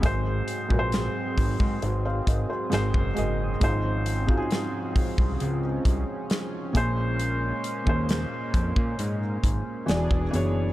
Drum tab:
HH |x-x-x-o-x-x-x-x-|x-x-x-o-x-x-x-x-|x-x-x-x-x-x-x-x-|
SD |----o-------o---|----o-------o---|----o-------o---|
BD |o--o--oo--o--o--|o--o--oo--o---o-|---o--oo--o--o--|